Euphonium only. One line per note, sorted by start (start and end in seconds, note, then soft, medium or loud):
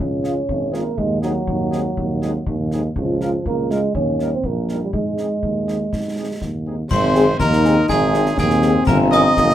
0.00 0.75 C#4 medium
0.73 0.99 A#3 medium
0.98 1.21 G#3 medium
1.22 2.67 F#3 medium
2.96 3.42 F3 medium
3.47 3.73 A#3 medium
3.71 3.94 G#3 medium
3.95 4.30 C#4 medium
4.34 4.47 C4 medium
4.46 4.82 A#3 medium
4.83 4.93 G3 soft
4.94 6.63 G#3 medium